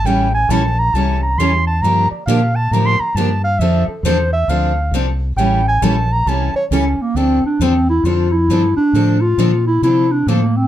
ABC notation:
X:1
M:4/4
L:1/8
Q:"Swing" 1/4=135
K:Dm
V:1 name="Clarinet"
g ^g a b a b ^b a | b d f a (3b c' b a f | e A c e f2 z2 | g ^g a b a ^c ^C B, |
C D C E F E2 D- | D F2 E E D B, C |]
V:2 name="Steel-string acoustic guitar"
[E,G,^CEA] z [E,G,CEA] z [E,G,CEA] z [E,G,CEA] z | [D,F,B,DG] z [D,F,B,DG] z [D,F,B,DG] z [D,F,B,DG] z | [D,F,CDA] z [D,F,CDA] z [D,F,CDA] z [D,F,CDA] z | [E,G,^CEA] z [E,G,CEA] z [E,G,CEA] z [E,G,CEA] z |
[D,F,CDA] z [D,F,CDA] z [D,F,CDA] z [D,F,CDA] z | [D,F,CDA] z [D,F,CDA] z [D,F,CDA] z [D,F,CDA] z |]
V:3 name="Steel-string acoustic guitar"
[E,G,^CEA] z [E,G,CEA] z [E,G,CEA] z [E,G,CEA] z | [D,F,B,DG] z [D,F,B,DG] z [D,F,B,DG] z [D,F,B,DG] z | [D,F,CDA] z [D,F,CDA] z [D,F,CDA] z [D,F,CDA] z | [E,G,^CEA] z [E,G,CEA] z [E,G,CEA] z [E,G,CEA] z |
[D,F,CDA] z [D,F,CDA] z [D,F,CDA] z [D,F,CDA] z | [D,F,CDA] z [D,F,CDA] z [D,F,CDA] z [D,F,CDA] z |]
V:4 name="Fingered electric bass" clef=bass
A,,,2 B,,,2 ^B,,,2 E,,2 | G,, z B,,2 A,, z G,,2 | F,, z E,,2 D,,2 C,,2 | A,,,2 B,,,2 ^B,,, z ^C,, z |
D,, z E,,2 F,,2 G,, z | A,,2 B,,2 C,2 A,,2 |]